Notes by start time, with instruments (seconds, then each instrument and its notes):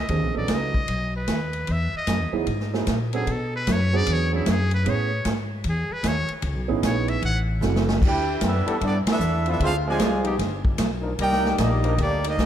0.00 muted trumpet D#5
0.08 upright bass D#2, grand piano F3 A#3 C4 D4 G#4, kick, ride
0.22 upright bass B1
0.34 upright bass A1, grand piano F#3 B3 C#4 D#4 A4, muted trumpet D5
0.48 upright bass C#2, kick, snare, hi-hat pedal, ride
0.54 muted trumpet D#5
0.74 kick
0.88 upright bass B1, kick, ride
1.16 muted trumpet B4
1.27 upright bass D#2, kick, snare, hi-hat pedal, ride
1.53 ride
1.67 upright bass E2, kick, ride
1.72 muted trumpet E5
1.94 muted trumpet D#5, muted upright bass stroke
2.07 upright bass F#2, kick, snare, hi-hat pedal, ride
2.20 upright bass E2
2.32 upright bass D#2, grand piano F#3 B3 D#4 E4 G#4
2.47 upright bass G#2, kick, ride
2.60 snare
2.73 grand piano F#3 B3 D#4 E4 G#4, snare
2.87 upright bass A#2, kick, snare, hi-hat pedal, ride
3.13 grand piano F#3 B3 C#4 D4 A4, muted trumpet G#4, ride
3.27 upright bass B2, kick, ride
3.32 muted trumpet A4
3.56 muted trumpet B4
3.67 upright bass F#2, kick, snare, hi-hat pedal, ride
3.72 muted trumpet C#5
3.93 grand piano F#3 B3 C#4 D4 G#4, muted trumpet D5
4.06 upright bass E2, kick, ride
4.12 muted trumpet C#5
4.32 grand piano F#3 B3 C#4 D4 G#4, muted trumpet E4
4.46 upright bass F#2, kick, snare, hi-hat pedal, ride
4.51 muted trumpet G#4
4.71 muted trumpet B4, ride
4.85 upright bass A2, grand piano A3 B3 C#4 E4 G#4, kick, ride
4.90 muted trumpet C#5
5.25 upright bass G#2, kick, snare, hi-hat pedal, ride
5.64 upright bass E2, kick, ride
5.69 muted trumpet G#4
5.90 muted trumpet B4, muted upright bass stroke
6.03 upright bass D#2, kick, snare, hi-hat pedal, ride
6.08 muted trumpet C#5
6.28 muted upright bass stroke, ride
6.42 upright bass C#2, kick, ride
6.55 upright bass B1
6.68 upright bass G#1, grand piano B3 C#4 D#4 E4 G#4
6.83 upright bass A#1, muted trumpet C#5, kick, snare, hi-hat pedal, ride
7.08 muted trumpet E5, ride
7.22 upright bass A1, muted trumpet F#5, kick, ride
7.61 upright bass F#1, grand piano C4 D4 E4 F#4 A4, snare, hi-hat pedal
7.76 snare
7.89 snare
8.02 upright bass D2, trombone section D4 E4 G4, kick, crash
8.07 trumpet section E4 B4 D5 G5
8.41 upright bass F#2, trombone section B3 E4, kick, snare, hi-hat pedal, ride
8.45 trombone section E3, trumpet section D4 A4 B4 E5
8.66 trombone section G3 B3 E4 A4, muted upright bass stroke, ride
8.81 upright bass G2, trombone section E3 B3 D4, kick, ride
8.86 trumpet section B3 E4 A4 D5
9.05 trombone section E3 B3 E4, muted upright bass stroke, snare, ride
9.11 trumpet section D4 A4 B4 E5
9.19 upright bass E2, hi-hat pedal
9.46 trombone section E3 F3 B3 C4 D4 E4 F4, trumpet section D4 B4, ride
9.50 trumpet section A4 E5
9.60 upright bass D2, trombone section G#3 C4 F4, trumpet section G#4, kick, ride
9.64 trumpet section D4 C5 F5
9.87 trombone section C3 F3 G#3, trumpet section F4 C5 D5 G#5
9.99 upright bass C2, kick, snare, hi-hat pedal, ride
10.24 trombone section F3 B3 D#4 G4, ride
10.39 upright bass G1, kick, snare, ride
10.65 kick
10.78 upright bass B1, kick, snare, hi-hat pedal, ride
11.02 trombone section F3 D4 D#4 A#4
11.19 upright bass C2, trombone section A#3 D#4 G4, trumpet section D#4 A#4 D5 G5, kick, ride
11.32 snare
11.45 snare
11.58 upright bass A#1, trombone section G3 A#3 D#4, trumpet section A#3 G4 D5 D#5, kick, snare, hi-hat pedal, ride
11.83 trombone section F3 D4 D#4 A#4, ride
11.98 upright bass D2, trombone section G3 A#3 D4, trumpet section A#3 D#4 G4 D5, kick, ride
12.24 trombone section G3 A#3 D#4, trumpet section A#3 G4 D5 D#5, ride
12.38 upright bass C2, kick, snare, hi-hat pedal